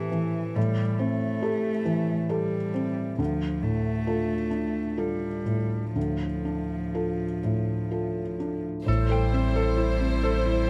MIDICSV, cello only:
0, 0, Header, 1, 2, 480
1, 0, Start_track
1, 0, Key_signature, 0, "minor"
1, 0, Tempo, 869565
1, 310, Time_signature, 3, 2, 24, 8
1, 1272, Tempo, 892857
1, 2712, Tempo, 986842
1, 3672, Tempo, 958466
1, 4632, Tempo, 902256
1, 5603, End_track
2, 0, Start_track
2, 0, Title_t, "Cello"
2, 0, Program_c, 0, 42
2, 0, Note_on_c, 0, 52, 57
2, 308, Note_on_c, 0, 55, 59
2, 316, Note_off_c, 0, 52, 0
2, 547, Note_on_c, 0, 57, 58
2, 556, Note_off_c, 0, 55, 0
2, 1271, Note_on_c, 0, 55, 51
2, 1280, Note_off_c, 0, 57, 0
2, 1748, Note_off_c, 0, 55, 0
2, 1752, Note_on_c, 0, 53, 53
2, 1983, Note_on_c, 0, 57, 56
2, 1991, Note_off_c, 0, 53, 0
2, 2714, Note_on_c, 0, 55, 44
2, 2722, Note_off_c, 0, 57, 0
2, 3182, Note_off_c, 0, 55, 0
2, 3185, Note_on_c, 0, 53, 45
2, 4509, Note_off_c, 0, 53, 0
2, 4627, Note_on_c, 0, 55, 56
2, 5603, Note_off_c, 0, 55, 0
2, 5603, End_track
0, 0, End_of_file